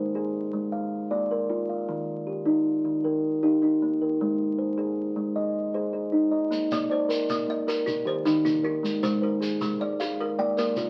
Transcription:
0.00 0.53 C5 medium
0.15 0.54 G#4 medium
0.53 0.73 G#3 medium
0.72 1.30 F5 medium
1.11 1.50 A#3 medium
1.11 1.69 D5 medium
1.31 1.89 A#4 medium
1.50 1.88 F4 medium
1.69 2.08 F5 medium
1.89 2.27 D#3 medium
2.27 2.85 G4 medium
2.45 2.85 D#4 medium
2.85 3.24 D#3 medium
3.04 3.62 A#4 medium
3.43 3.61 D#4 medium
3.43 4.01 G4 medium
3.62 4.20 D#4 medium
3.82 4.21 A#3 medium
4.02 4.40 A#4 medium
4.21 4.59 G#3 medium
4.59 5.17 C5 medium
4.78 5.17 G#4 medium
5.16 5.55 G#3 medium
5.36 5.94 D#5 medium
5.74 5.92 G#4 medium
5.74 6.33 C5 medium
5.93 6.52 G#4 medium
6.12 6.52 D#4 medium
6.31 6.71 D#5 medium
6.51 6.90 A#3 medium
6.51 shekere medium
6.71 7.11 A#3 medium
6.71 7.30 D5 medium
6.71 shekere medium
6.90 7.49 C5 medium
6.90 7.48 D5 medium
7.09 7.48 A#4 medium
7.09 shekere medium
7.29 7.68 A#3 medium
7.29 shekere medium
7.48 7.67 A#3 medium
7.48 8.07 D#5 medium
7.67 8.25 A#4 medium
7.67 7.87 A#4 medium
7.67 shekere medium
7.86 8.44 D#4 medium
7.86 shekere medium
8.05 8.45 D#3 medium
8.05 8.64 G4 medium
8.05 8.65 C5 medium
8.25 8.64 D#3 medium
8.25 8.84 D#4 medium
8.25 shekere medium
8.45 8.84 A#3 medium
8.45 8.63 D#4 medium
8.45 shekere medium
8.63 9.03 D#4 medium
8.63 9.03 A#4 medium
8.83 9.22 G#3 medium
8.83 shekere medium
9.03 9.42 G#3 medium
9.03 9.61 C5 medium
9.03 shekere medium
9.22 9.81 A#4 medium
9.22 9.80 C5 medium
9.41 9.80 G#4 medium
9.41 shekere medium
9.61 10.00 G#3 medium
9.61 shekere medium
9.80 9.99 G#3 medium
9.80 10.39 D5 medium
10.00 10.19 G#4 medium
10.00 10.58 F5 medium
10.00 shekere medium
10.20 10.76 A#4 medium
10.38 10.77 A#3 medium
10.38 10.90 D5 medium
10.38 10.90 G5 medium
10.57 10.90 A#3 medium
10.57 10.90 A#4 medium
10.57 shekere medium
10.76 10.90 F4 medium
10.76 10.90 A#4 medium
10.76 shekere medium

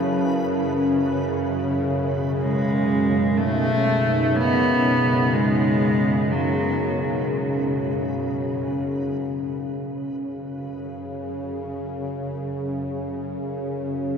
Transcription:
0.00 9.30 F#2 medium
0.00 9.30 C#3 medium
0.00 1.44 F#3 medium
0.00 1.43 E4 medium
0.00 9.34 B4 medium
0.00 9.33 C#5 medium
0.00 1.42 A5 medium
1.42 9.32 B2 medium
2.19 9.32 G#4 medium
2.35 9.32 D#4 medium
2.40 3.39 G#3 loud
3.37 4.37 A3 loud
4.36 5.35 B3 loud
5.34 6.33 G#3 loud
6.31 7.31 F#3 medium
9.32 14.18 F#2 medium
9.32 14.18 C#3 medium

